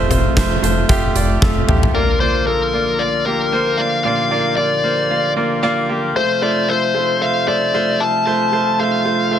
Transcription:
Already playing: F1 C3 F3 A3 F4 C5 D#5
0.10 A3 F4 C5, closed hi-hat, floor tom
0.36 F1 A3 F4 C5, kick, snare, clap, closed hi-hat
0.62 F1 A3 F4 C5, closed hi-hat
0.89 F1 A3 F4 G4, kick, closed hi-hat
1.15 F1 A3 F4 D5, closed hi-hat
1.42 F1 A3 F4 A4, kick, snare
1.68 A1 A3 F4 G4, mid tom
1.83 floor tom
1.95 A#2 D3 F3 A#3 F4 A#4 D5
2.20 A#3 F4 C5 D5
2.47 A#3 F4 A4 A#4
2.73 A#3 F4 D5
2.99 A#3 F4 D5
3.25 A#3 F4 G4 A#4
3.52 A#3 F4 C5
3.77 A#3 F4 D5 F5
4.04 A#2 A#3 F4 G4 D5 F5
4.31 A#3 F4 D5
4.57 A#3 F4 D5
4.84 A#3 F4 C5
5.10 A#3 F4 F5
5.36 A#3 F4 D5
5.63 A#3 F4 D5
5.89 A#3 F4 G4
6.16 C3 F3 A3 F4 C5
6.42 A3 F4 C5 D5
6.68 A3 F4 A4 C5
6.94 A3 F4 C5
7.21 A3 F4 C5 F5
7.47 A3 F4 C5 D5
7.74 A3 F4 C5
8.00 A3 F4 C5 A5
8.26 A3 F4 C5 A5
8.52 A3 F4 C5
8.79 A3 F4 C5 F5
9.05 A3 F4 C5
9.31 A3 F4 C5

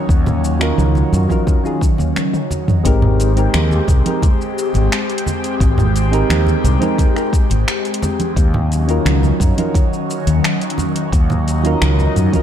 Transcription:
Already playing: D#3 F#3 C#4
0.09 D#2, kick, shaker
0.26 high conga, low conga, shaker
0.44 shaker
0.59 F#3 C#4 D#4 F4 A#4, finger snap, shaker
0.78 C#2, low conga, shaker
0.95 high conga, shaker
1.12 F#2, low conga, shaker
1.28 F#3 C#4 D#4 F4 A#4, kick, low conga, shaker
1.47 kick, high conga, shaker
1.63 F#3 C#4 D#4 F4 G#4, shaker
1.81 kick, shaker
1.98 D#2, high conga, shaker
2.16 finger snap, high tom, shaker
2.33 high tom, shaker
2.51 high conga, shaker
2.68 mid tom, low conga, shaker
2.84 G#1 G#3 C4 D#4 G4 A#4, kick, closed hi-hat, shaker
3.02 high conga, low conga
3.20 closed hi-hat, shaker
3.35 G#3 C4 D#4 G4 A#4, closed hi-hat, shaker
3.54 D#2, finger snap, closed hi-hat, low conga, shaker
3.71 high conga, shaker
3.88 C2, kick, closed hi-hat, low conga, shaker
4.04 G#3 C4 D#4 G4 A#4, closed hi-hat, low conga, shaker
4.22 kick, closed hi-hat, high conga, shaker
4.41 shaker
4.58 shaker
4.74 G#1, closed hi-hat, high conga, shaker
4.92 finger snap, closed hi-hat, shaker
5.10 closed hi-hat, shaker
5.18 closed hi-hat
5.26 high conga, shaker
5.44 closed hi-hat, shaker
5.60 G#1, kick, closed hi-hat, shaker
5.78 high conga, low conga, shaker
5.96 closed hi-hat, shaker
6.10 G#3 C4 D#4 G4 A#4, closed hi-hat, shaker
6.30 D#2, finger snap, closed hi-hat, low conga, shaker
6.47 high conga, shaker
6.64 C2, closed hi-hat, low conga, shaker
6.79 G#3 C4 D#4 G4 A#4, closed hi-hat, low conga, shaker
6.98 kick, closed hi-hat, high conga, shaker
7.14 G#3 C4 D#4 G4 A#4, finger snap, shaker
7.33 kick, closed hi-hat, shaker
7.50 G#1, closed hi-hat, high conga, shaker
7.68 finger snap, closed hi-hat, shaker
7.85 closed hi-hat, shaker
7.94 closed hi-hat
8.02 high conga, shaker
8.20 closed hi-hat, low conga, shaker
8.36 D#2 D#3 F#3 C#4, kick, closed hi-hat, shaker
8.54 high conga, low conga
8.72 closed hi-hat, shaker
8.87 F#3 C#4 D#4 F4 A#4, closed hi-hat, shaker
9.05 C#2, finger snap, closed hi-hat, low conga, shaker
9.23 high conga, shaker
9.40 F#2, kick, closed hi-hat, low conga, shaker
9.56 F#3 C#4 D#4 F4 A#4, closed hi-hat, low conga, shaker
9.74 kick, closed hi-hat, high conga, shaker
9.93 shaker
10.10 shaker
10.27 D#2, closed hi-hat, high conga, shaker
10.44 finger snap, closed hi-hat, shaker
10.61 closed hi-hat, shaker
10.70 closed hi-hat
10.78 high conga, shaker
10.96 closed hi-hat, shaker
11.12 D#2 D#4, kick, closed hi-hat, shaker
11.30 high conga, low conga, shaker
11.48 closed hi-hat, shaker
11.63 F#3 C#4 D#4 F4 A#4, closed hi-hat, shaker
11.81 C#2, finger snap, closed hi-hat, low conga, shaker
11.99 high conga, shaker
12.16 F#2, closed hi-hat, low conga, shaker
12.32 F#3 C#4 D#4 F4 A#4, kick, closed hi-hat, low conga, shaker

